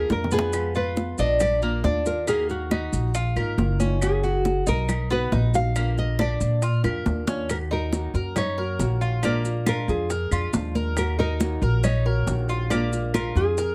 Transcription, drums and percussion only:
0.10 high bongo medium
0.10 high conga medium
0.10 maracas soft
0.24 low bongo medium
0.31 high conga medium
0.31 maracas medium
0.39 low bongo medium
0.53 high bongo medium
0.53 claves medium
0.53 maracas medium
0.75 high bongo soft
0.75 high conga soft
0.75 maracas soft
0.97 high bongo medium
0.97 high conga medium
0.97 maracas soft
1.18 high conga soft
1.18 maracas medium
1.40 high bongo medium
1.40 high conga soft
1.40 low conga medium
1.40 claves medium
1.40 maracas medium
1.62 high bongo soft
1.62 high conga soft
1.62 maracas soft
1.84 high bongo soft
1.84 low bongo medium
1.84 high conga medium
1.84 maracas soft
2.06 high bongo soft
2.06 maracas medium
2.27 high bongo medium
2.27 high conga soft
2.27 claves medium
2.27 maracas medium
2.49 high bongo soft
2.49 high conga soft
2.49 maracas soft
2.71 high bongo medium
2.71 high conga medium
2.71 claves medium
2.71 maracas soft
2.93 high conga soft
2.93 maracas medium
3.14 high bongo medium
3.14 high conga soft
3.14 maracas medium
3.36 high bongo soft
3.36 high conga soft
3.36 claves medium
3.36 maracas soft
3.58 high bongo soft
3.58 low bongo medium
3.58 high conga medium
3.58 maracas soft
3.80 high bongo soft
3.80 high conga medium
3.80 maracas medium
4.02 high bongo medium
4.02 high conga soft
4.02 claves medium
4.02 maracas medium
4.24 high bongo soft
4.24 high conga soft
4.24 maracas soft
4.45 high bongo medium
4.45 high conga medium
4.45 maracas soft
4.67 high conga soft
4.67 maracas medium
4.89 high bongo medium
4.89 high conga soft
4.89 low conga medium
4.89 claves medium
4.89 maracas medium
5.10 high bongo soft
5.10 high conga soft
5.10 maracas soft
5.32 high bongo soft
5.32 low bongo medium
5.32 high conga medium
5.32 maracas soft
5.54 high bongo soft
5.54 high conga soft
5.54 maracas medium
5.76 high bongo medium
5.76 high conga soft
5.76 claves medium
5.76 maracas medium
5.97 high bongo soft
5.97 high conga soft
5.97 maracas soft
6.19 high bongo medium
6.19 high conga loud
6.19 claves medium
6.19 maracas soft
6.41 high conga soft
6.41 maracas medium
6.62 high bongo medium
6.62 high conga soft
6.62 maracas medium
6.84 high bongo medium
6.84 high conga soft
6.84 claves medium
6.84 maracas soft
7.06 low bongo medium
7.06 high conga medium
7.06 maracas soft
7.27 low bongo loud
7.27 high conga medium
7.27 maracas medium
7.49 high bongo medium
7.49 high conga soft
7.49 claves medium
7.49 maracas medium
7.71 high bongo soft
7.71 high conga soft
7.93 high bongo medium
7.93 high conga loud
7.93 maracas medium
8.15 high conga soft
8.15 maracas soft
8.36 high bongo medium
8.36 high conga soft
8.36 low conga medium
8.36 claves medium
8.36 maracas medium
8.58 high bongo soft
8.58 high conga soft
8.79 high bongo soft
8.79 low bongo medium
8.79 high conga soft
8.79 maracas medium
9.01 high bongo soft
9.01 high conga soft
9.01 maracas soft
9.23 high bongo medium
9.23 high conga soft
9.23 claves medium
9.23 maracas medium
9.45 high bongo soft
9.45 high conga soft
9.45 maracas medium
9.66 high bongo medium
9.66 high conga loud
9.66 claves medium
9.66 maracas medium
9.89 high conga soft
9.89 maracas soft
10.10 high bongo medium
10.10 high conga soft
10.10 maracas medium
10.31 high bongo soft
10.31 high conga soft
10.31 claves medium
10.31 maracas medium
10.53 high bongo soft
10.53 low bongo medium
10.53 high conga medium
10.53 maracas medium
10.75 high bongo soft
10.75 high conga medium
10.75 maracas soft
10.97 high bongo medium
10.97 high conga soft
10.97 claves medium
10.97 maracas medium
11.19 high bongo soft
11.19 high conga soft
11.40 high bongo medium
11.40 high conga loud
11.40 maracas medium
11.62 high conga soft
11.62 maracas soft
11.84 high bongo medium
11.84 high conga soft
11.84 low conga medium
11.84 claves medium
11.84 maracas medium
12.06 high bongo soft
12.06 high conga soft
12.27 high bongo soft
12.27 low bongo medium
12.27 high conga soft
12.27 maracas medium
12.49 high bongo soft
12.49 high conga soft
12.49 maracas soft
12.71 high bongo medium
12.71 high conga soft
12.71 claves medium
12.71 maracas medium
12.92 high bongo soft
12.92 high conga soft
12.92 maracas medium
13.14 high bongo medium
13.14 high conga medium
13.14 claves medium
13.14 maracas medium
13.36 high conga soft
13.36 maracas soft
13.58 high bongo medium
13.58 high conga soft
13.58 maracas medium

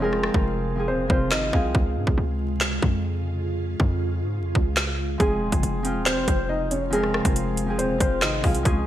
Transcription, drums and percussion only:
0.13 cross-stick medium
0.23 cross-stick loud
0.34 kick medium
1.10 kick loud
1.31 snare loud
1.31 clap medium
1.53 kick medium
1.75 kick loud
2.07 kick medium
2.61 snare loud
2.61 clap medium
2.83 kick medium
3.80 kick medium
4.55 kick loud
4.77 snare loud
4.77 clap medium
5.20 kick loud
5.20 closed hi-hat soft
5.52 kick medium
5.52 closed hi-hat medium
5.63 closed hi-hat medium
5.85 closed hi-hat medium
6.06 snare loud
6.06 clap medium
6.06 closed hi-hat medium
6.28 kick medium
6.28 closed hi-hat medium
6.71 closed hi-hat medium
6.93 closed hi-hat medium
7.03 cross-stick medium
7.14 cross-stick loud
7.25 kick medium
7.25 closed hi-hat medium
7.36 closed hi-hat medium
7.57 closed hi-hat medium
7.79 closed hi-hat medium
8.00 kick medium
8.00 closed hi-hat medium
8.22 snare loud
8.22 clap medium
8.44 kick medium
8.44 open hi-hat soft
8.54 closed hi-hat medium
8.65 kick loud
8.65 closed hi-hat medium

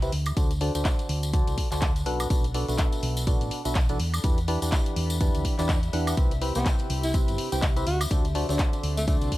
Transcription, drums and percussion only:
0.02 closed hi-hat soft
0.02 tambourine soft
0.12 open hi-hat loud
0.26 closed hi-hat soft
0.26 tambourine medium
0.26 high woodblock medium
0.37 kick loud
0.37 closed hi-hat medium
0.37 tambourine medium
0.51 closed hi-hat soft
0.51 tambourine soft
0.61 open hi-hat loud
0.75 closed hi-hat soft
0.75 tambourine medium
0.85 kick loud
0.85 clap loud
0.85 closed hi-hat medium
0.85 tambourine medium
0.99 closed hi-hat soft
0.99 tambourine soft
1.09 open hi-hat loud
1.23 closed hi-hat soft
1.23 tambourine medium
1.33 kick loud
1.33 closed hi-hat medium
1.33 tambourine medium
1.47 closed hi-hat soft
1.47 tambourine soft
1.58 kick medium
1.58 open hi-hat loud
1.72 clap soft
1.72 closed hi-hat soft
1.72 tambourine medium
1.81 kick loud
1.81 clap loud
1.81 closed hi-hat medium
1.81 tambourine medium
1.96 closed hi-hat soft
1.96 tambourine soft
2.06 open hi-hat loud
2.20 closed hi-hat soft
2.20 tambourine medium
2.20 high woodblock medium
2.30 kick loud
2.30 closed hi-hat medium
2.30 tambourine medium
2.44 closed hi-hat soft
2.44 tambourine soft
2.54 open hi-hat loud
2.68 closed hi-hat soft
2.68 tambourine medium
2.78 kick loud
2.78 clap loud
2.78 closed hi-hat medium
2.78 tambourine medium
2.92 closed hi-hat soft
2.92 tambourine soft
3.03 open hi-hat loud
3.17 closed hi-hat soft
3.17 tambourine medium
3.27 kick loud
3.27 closed hi-hat medium
3.27 tambourine medium
3.41 closed hi-hat soft
3.41 tambourine soft
3.51 open hi-hat loud
3.65 closed hi-hat soft
3.65 tambourine medium
3.75 kick loud
3.75 clap loud
3.75 closed hi-hat medium
3.89 closed hi-hat soft
3.89 tambourine soft
4.00 open hi-hat loud
4.14 closed hi-hat soft
4.14 tambourine medium
4.14 high woodblock medium
4.24 kick loud
4.24 closed hi-hat medium
4.24 tambourine medium
4.38 closed hi-hat soft
4.38 tambourine soft
4.48 open hi-hat loud
4.62 closed hi-hat soft
4.62 tambourine medium
4.72 kick loud
4.72 clap loud
4.72 closed hi-hat medium
4.72 tambourine medium
4.86 closed hi-hat soft
4.86 tambourine soft
4.96 open hi-hat loud
5.10 closed hi-hat soft
5.10 tambourine medium
5.20 kick loud
5.20 closed hi-hat medium
5.20 tambourine medium
5.34 closed hi-hat soft
5.34 tambourine soft
5.45 kick medium
5.45 open hi-hat loud
5.59 clap soft
5.59 closed hi-hat soft
5.59 tambourine medium
5.69 kick loud
5.69 clap loud
5.69 closed hi-hat medium
5.69 tambourine medium
5.83 closed hi-hat soft
5.83 tambourine soft
5.93 open hi-hat loud
6.07 closed hi-hat soft
6.07 tambourine medium
6.07 high woodblock medium
6.17 kick loud
6.17 closed hi-hat medium
6.31 closed hi-hat soft
6.31 tambourine soft
6.42 open hi-hat loud
6.55 closed hi-hat soft
6.55 tambourine medium
6.66 kick loud
6.66 clap loud
6.66 closed hi-hat medium
6.66 tambourine medium
6.79 closed hi-hat soft
6.79 tambourine soft
6.90 open hi-hat loud
7.03 closed hi-hat soft
7.03 tambourine medium
7.14 kick loud
7.14 closed hi-hat medium
7.14 tambourine medium
7.28 closed hi-hat soft
7.28 tambourine soft
7.38 open hi-hat loud
7.52 closed hi-hat soft
7.52 tambourine medium
7.62 kick loud
7.62 clap loud
7.62 closed hi-hat medium
7.62 tambourine medium
7.77 closed hi-hat soft
7.77 tambourine soft
7.87 open hi-hat loud
8.01 closed hi-hat soft
8.01 tambourine medium
8.01 high woodblock medium
8.11 kick loud
8.11 closed hi-hat medium
8.11 tambourine medium
8.25 closed hi-hat soft
8.25 tambourine soft
8.35 open hi-hat loud
8.49 closed hi-hat soft
8.49 tambourine medium
8.59 kick loud
8.59 clap loud
8.59 closed hi-hat medium
8.59 tambourine medium
8.73 closed hi-hat soft
8.73 tambourine soft
8.84 open hi-hat loud
8.97 closed hi-hat soft
8.97 tambourine medium
9.08 kick loud
9.08 closed hi-hat medium
9.08 tambourine medium
9.21 closed hi-hat soft
9.21 tambourine soft
9.32 kick medium
9.32 open hi-hat loud

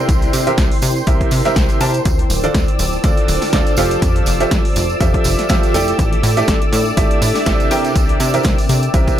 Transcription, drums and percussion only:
0.09 kick loud
0.09 closed hi-hat medium
0.09 tambourine medium
0.22 closed hi-hat soft
0.22 tambourine soft
0.33 open hi-hat loud
0.33 tambourine medium
0.47 closed hi-hat soft
0.47 tambourine soft
0.57 kick loud
0.57 snare loud
0.57 closed hi-hat medium
0.57 tambourine soft
0.71 open hi-hat medium
0.82 open hi-hat loud
0.82 tambourine medium
0.96 tambourine soft
1.07 kick loud
1.07 closed hi-hat medium
1.07 tambourine soft
1.21 kick medium
1.21 closed hi-hat soft
1.31 open hi-hat loud
1.31 tambourine medium
1.45 snare soft
1.45 closed hi-hat soft
1.45 tambourine soft
1.56 kick loud
1.56 snare loud
1.56 closed hi-hat medium
1.56 tambourine medium
1.69 closed hi-hat soft
1.69 tambourine soft
1.81 open hi-hat loud
1.81 tambourine loud
1.94 closed hi-hat soft
1.94 tambourine soft
2.05 kick loud
2.05 closed hi-hat medium
2.05 tambourine medium
2.19 closed hi-hat soft
2.30 open hi-hat loud
2.30 tambourine medium
2.44 closed hi-hat soft
2.44 tambourine soft
2.54 kick loud
2.54 snare loud
2.54 closed hi-hat medium
2.54 tambourine soft
2.68 closed hi-hat soft
2.79 open hi-hat loud
2.79 tambourine medium
2.93 tambourine soft
3.04 kick loud
3.04 closed hi-hat medium
3.04 tambourine soft
3.17 closed hi-hat soft
3.28 open hi-hat loud
3.28 tambourine medium
3.42 snare soft
3.42 open hi-hat medium
3.42 tambourine soft
3.53 kick loud
3.53 snare loud
3.53 closed hi-hat medium
3.53 tambourine medium
3.67 closed hi-hat soft
3.67 tambourine soft
3.77 open hi-hat loud
3.77 tambourine medium
3.91 closed hi-hat soft
3.91 tambourine soft
4.02 kick loud
4.02 closed hi-hat medium
4.02 tambourine soft
4.16 closed hi-hat soft
4.26 open hi-hat loud
4.26 tambourine medium
4.40 closed hi-hat soft
4.40 tambourine soft
4.51 kick loud
4.51 snare loud
4.51 closed hi-hat medium
4.51 tambourine soft
4.65 open hi-hat medium
4.76 open hi-hat loud
4.76 tambourine medium
4.89 tambourine soft
5.00 kick loud
5.00 closed hi-hat medium
5.00 tambourine soft
5.14 kick medium
5.14 closed hi-hat soft
5.24 open hi-hat loud
5.24 tambourine medium
5.39 snare soft
5.39 closed hi-hat soft
5.39 tambourine soft
5.49 kick loud
5.49 snare loud
5.49 closed hi-hat medium
5.49 tambourine soft
5.63 closed hi-hat soft
5.63 tambourine soft
5.74 open hi-hat medium
5.74 tambourine loud
5.88 closed hi-hat soft
5.88 tambourine soft
5.99 kick loud
5.99 closed hi-hat medium
5.99 tambourine soft
6.13 closed hi-hat soft
6.23 open hi-hat loud
6.23 tambourine medium
6.37 closed hi-hat soft
6.37 tambourine soft
6.47 kick loud
6.47 snare loud
6.47 closed hi-hat medium
6.47 tambourine soft
6.62 closed hi-hat soft
6.73 open hi-hat loud
6.73 tambourine medium
6.85 tambourine soft
6.97 kick loud
6.97 closed hi-hat medium
6.97 tambourine soft
7.11 closed hi-hat soft
7.22 open hi-hat loud
7.22 tambourine medium
7.35 snare soft
7.35 open hi-hat medium
7.35 tambourine soft
7.46 kick loud
7.46 snare loud
7.46 closed hi-hat medium
7.46 tambourine soft
7.60 closed hi-hat soft
7.60 tambourine soft
7.71 open hi-hat loud
7.71 tambourine medium
7.84 closed hi-hat soft
7.84 tambourine soft
7.96 kick loud
7.96 closed hi-hat loud
7.96 tambourine medium
8.09 closed hi-hat soft
8.20 open hi-hat loud
8.20 tambourine medium
8.34 closed hi-hat soft
8.34 tambourine soft
8.43 kick loud
8.43 snare loud
8.43 closed hi-hat medium
8.43 tambourine soft
8.58 open hi-hat medium
8.58 tambourine soft
8.69 open hi-hat loud
8.69 tambourine medium
8.83 closed hi-hat soft
8.83 tambourine soft
8.94 kick loud
8.94 closed hi-hat medium
8.94 tambourine medium
9.07 kick medium
9.07 closed hi-hat soft
9.07 tambourine soft

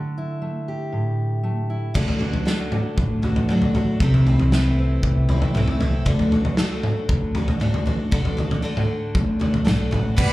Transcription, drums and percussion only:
1.95 kick medium
1.95 floor tom medium
1.95 crash medium
2.08 floor tom medium
2.21 floor tom medium
2.33 floor tom medium
2.47 snare medium
2.72 mid tom medium
2.98 kick medium
2.98 floor tom medium
3.23 floor tom medium
3.36 floor tom medium
3.49 mid tom medium
3.62 floor tom medium
3.75 floor tom medium
4.00 kick medium
4.00 floor tom medium
4.14 floor tom medium
4.26 floor tom medium
4.39 floor tom medium
4.52 snare medium
5.03 kick medium
5.03 floor tom medium
5.29 floor tom medium
5.42 floor tom medium
5.55 mid tom medium
5.68 floor tom medium
5.81 floor tom medium
6.06 kick medium
6.06 floor tom medium
6.19 floor tom medium
6.32 floor tom medium
6.45 floor tom medium
6.57 snare medium
6.83 mid tom medium
7.09 kick loud
7.09 floor tom medium
7.35 floor tom medium
7.48 floor tom medium
7.61 mid tom medium
7.74 floor tom medium
7.87 floor tom medium
8.12 kick loud
8.12 floor tom medium
8.25 floor tom medium
8.38 floor tom medium
8.51 floor tom medium
8.77 mid tom medium
9.15 kick loud
9.15 floor tom medium
9.41 floor tom medium
9.54 floor tom medium
9.67 snare medium
9.67 mid tom medium
9.92 floor tom medium
9.92 mid tom medium
10.18 kick loud
10.18 crash loud

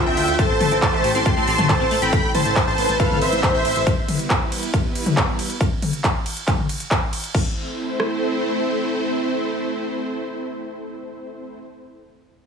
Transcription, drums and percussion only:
0.17 open hi-hat loud
0.17 ride medium
0.28 closed hi-hat medium
0.39 kick loud
0.39 closed hi-hat medium
0.61 open hi-hat loud
0.61 mid tom medium
0.61 ride medium
0.71 closed hi-hat medium
0.82 kick loud
0.82 clap loud
0.82 closed hi-hat medium
1.04 open hi-hat loud
1.04 ride medium
1.15 closed hi-hat medium
1.26 kick loud
1.26 closed hi-hat medium
1.48 open hi-hat loud
1.48 ride medium
1.58 closed hi-hat medium
1.58 mid tom medium
1.69 kick loud
1.69 clap loud
1.69 closed hi-hat medium
1.91 open hi-hat medium
1.91 ride medium
2.02 closed hi-hat medium
2.13 kick loud
2.13 closed hi-hat medium
2.35 open hi-hat loud
2.35 mid tom medium
2.35 ride medium
2.45 closed hi-hat medium
2.56 kick loud
2.56 clap loud
2.56 closed hi-hat medium
2.78 open hi-hat medium
2.78 ride medium
2.89 closed hi-hat medium
3.00 kick loud
3.00 closed hi-hat medium
3.11 mid tom medium
3.21 open hi-hat loud
3.21 ride medium
3.32 closed hi-hat medium
3.43 kick loud
3.43 clap loud
3.43 closed hi-hat medium
3.65 open hi-hat medium
3.65 ride medium
3.76 closed hi-hat medium
3.87 kick loud
3.87 closed hi-hat medium
4.08 open hi-hat loud
4.08 mid tom medium
4.08 ride medium
4.19 closed hi-hat medium
4.30 kick loud
4.30 clap loud
4.30 closed hi-hat medium
4.52 open hi-hat medium
4.52 ride medium
4.63 closed hi-hat medium
4.74 kick loud
4.74 closed hi-hat medium
4.95 open hi-hat loud
4.95 ride medium
5.06 closed hi-hat medium
5.06 mid tom medium
5.17 kick loud
5.17 clap loud
5.17 closed hi-hat medium
5.39 open hi-hat medium
5.39 ride medium
5.50 closed hi-hat medium
5.61 kick loud
5.61 closed hi-hat medium
5.82 open hi-hat medium
5.82 mid tom medium
5.82 ride medium
5.93 closed hi-hat medium
6.04 kick loud
6.04 clap loud
6.04 closed hi-hat medium
6.26 open hi-hat loud
6.26 ride medium
6.37 closed hi-hat medium
6.48 kick loud
6.48 clap medium
6.48 closed hi-hat medium
6.59 mid tom medium
6.69 open hi-hat loud
6.69 ride medium
6.80 closed hi-hat medium
6.91 kick loud
6.91 clap loud
6.91 closed hi-hat medium
7.13 open hi-hat medium
7.13 ride medium
7.24 closed hi-hat medium
7.35 kick loud
7.35 crash medium
8.00 cross-stick medium

